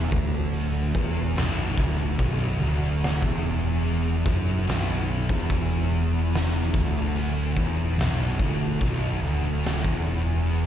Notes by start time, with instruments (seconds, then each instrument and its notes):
Already playing: distorted electric guitar E2
0.12 picked electric bass D1, distorted electric guitar D2, kick
0.54 open hi-hat
0.95 picked electric bass E1, distorted electric guitar E2, kick
1.35 picked electric bass B0, distorted electric guitar B1, snare, open hi-hat
1.77 picked electric bass D1, distorted electric guitar D2, kick
2.19 picked electric bass B0, distorted electric guitar B1, kick, open hi-hat
2.60 picked electric bass D1, distorted electric guitar D2
3.02 snare, open hi-hat
3.22 picked electric bass E1, distorted electric guitar E2, kick
3.85 open hi-hat
4.26 picked electric bass F#1, distorted electric guitar F#2, kick
4.67 picked electric bass B0, distorted electric guitar B1, snare, open hi-hat
5.29 picked electric bass E1, distorted electric guitar E2, kick
5.50 kick, open hi-hat
6.33 snare, open hi-hat
6.74 picked electric bass D1, distorted electric guitar D2, kick
7.16 open hi-hat
7.57 picked electric bass E1, distorted electric guitar E2, kick
7.98 picked electric bass B0, distorted electric guitar B1, snare, open hi-hat
8.39 picked electric bass D1, distorted electric guitar D2, kick
8.81 picked electric bass B0, distorted electric guitar B1, kick, open hi-hat
9.22 picked electric bass D1, distorted electric guitar D2
9.64 snare, open hi-hat
9.84 picked electric bass E1, distorted electric guitar E2, kick
10.47 open hi-hat